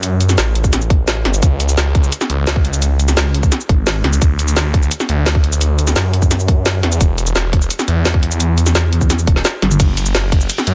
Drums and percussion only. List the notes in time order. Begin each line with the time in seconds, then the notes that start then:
0.03 closed hi-hat, shaker
0.21 closed hi-hat, shaker
0.29 snare, shaker
0.38 snare, closed hi-hat, shaker
0.55 closed hi-hat
0.64 kick, shaker
0.73 snare, closed hi-hat, shaker
0.82 shaker
0.90 kick, closed hi-hat
1.08 snare, closed hi-hat, shaker
1.25 snare, closed hi-hat
1.34 shaker
1.43 kick, closed hi-hat, shaker
1.60 closed hi-hat, shaker
1.69 shaker
1.77 snare, closed hi-hat, shaker
1.95 kick, closed hi-hat
2.04 shaker
2.12 closed hi-hat, shaker
2.21 snare, shaker
2.30 closed hi-hat
2.47 snare, closed hi-hat, shaker
2.56 kick
2.65 closed hi-hat
2.73 shaker
2.82 closed hi-hat, shaker
3.00 closed hi-hat, shaker
3.08 snare, shaker
3.17 snare, closed hi-hat, shaker
3.34 closed hi-hat
3.43 kick, shaker
3.52 snare, closed hi-hat, shaker
3.61 shaker
3.69 kick, closed hi-hat
3.87 snare, closed hi-hat, shaker
4.04 snare, closed hi-hat
4.13 shaker
4.22 kick, closed hi-hat, shaker
4.39 closed hi-hat, shaker
4.48 shaker
4.57 snare, closed hi-hat, shaker
4.74 kick, closed hi-hat
4.83 shaker
4.91 closed hi-hat, shaker
5.00 snare, shaker
5.09 closed hi-hat
5.26 snare, closed hi-hat, shaker
5.35 kick
5.44 closed hi-hat
5.52 shaker
5.61 closed hi-hat, shaker
5.79 closed hi-hat, shaker
5.87 snare, shaker
5.96 snare, closed hi-hat, shaker
6.13 closed hi-hat
6.22 kick, shaker
6.31 snare, closed hi-hat, shaker
6.40 shaker
6.48 kick, closed hi-hat
6.66 snare, closed hi-hat, shaker
6.83 snare, closed hi-hat
6.92 shaker
7.01 kick, closed hi-hat, shaker
7.18 closed hi-hat, shaker
7.27 shaker
7.36 snare, closed hi-hat, shaker
7.53 kick, closed hi-hat
7.62 shaker
7.70 closed hi-hat, shaker
7.79 snare, shaker
7.88 closed hi-hat
8.05 snare, closed hi-hat, shaker
8.14 kick
8.23 closed hi-hat
8.31 shaker
8.40 closed hi-hat, shaker
8.58 closed hi-hat, shaker
8.66 snare, shaker
8.75 snare, closed hi-hat, shaker
8.93 closed hi-hat
9.01 kick, shaker
9.10 snare, closed hi-hat, shaker
9.19 shaker
9.27 kick, closed hi-hat
9.36 snare
9.45 snare, closed hi-hat, shaker
9.62 snare, closed hi-hat, high tom
9.71 mid tom, shaker
9.80 kick, closed hi-hat, ride, shaker
9.97 closed hi-hat, ride, shaker
10.06 shaker
10.15 snare, closed hi-hat, ride, shaker
10.32 kick, closed hi-hat, ride
10.41 shaker
10.50 closed hi-hat, ride, shaker
10.58 snare, shaker
10.67 closed hi-hat, ride